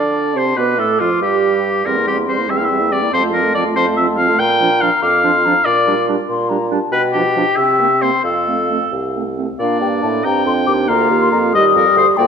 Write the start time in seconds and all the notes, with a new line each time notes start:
Already playing: D3 D4 D5 A5
0.35 C3 C4 C5
0.56 B2 B3 B4 D6
0.78 A2 A3 A4
1.00 F2 F3 F4
1.22 G2 G3 G4
1.85 E2 G3 C4 A#4 C6
1.95 A#3 E4
2.07 G3 C4 G4
2.16 A#3 E4
2.28 G3 C4 C5
2.38 A#3 E4
2.48 E2 G3 C4 E5 G5
2.57 A#3 E4 F5
2.64 E5
2.70 G3 C4
2.80 A#3 E4
2.91 G3 C4 D5
3.02 A#3 E4
3.12 F2 F3 C4 C5 A5
3.22 A3 F4
3.32 F3 C4 A#4
3.43 A3 F4
3.55 F3 C4 D5
3.65 A3 F4
3.75 F2 F3 C4 C5
3.86 A3 F4
3.96 F3 C4 E5
4.08 A3 F4
4.17 F3 C4 F5
4.29 A3 F4
4.39 A#2 G5 A#5
4.60 F3 D4
4.81 F3 D4 F5
5.02 F2 F5 D6
5.24 F3 D4 C6
5.45 F3 D4 A#5
5.65 A#2 D5 D6
5.87 G3 D4
6.08 G3 D4
6.29 A#2 C6
6.49 G3 D4 A#5
6.70 G3 D4 A5
6.92 B2 B4 G5
7.13 F3 D4 G4
7.36 F3 D4
7.56 C3 E5
7.80 A#3 C4
8.02 A#3 C4 C5
8.24 F2 A4 F5
8.47 A3 C4
8.70 A3 C4
8.92 C2
9.15 A3 C4
9.38 A3 C4
9.59 A#2 A#3 D4 D5 F5
9.81 G2 G5
10.02 A2 A5
10.24 G2 C4 D4 G5 A#5
10.46 F2 C6
10.67 D#2 D6
10.88 D2 A#3 F4 F5 A#5
11.10 D#2
11.21 C6
11.32 F2 A#5
11.54 D#2 G3 G4 D#5 D#6
11.75 F2 A#4
11.96 D2 C5
12.17 D2 A#3 F4 D5 G5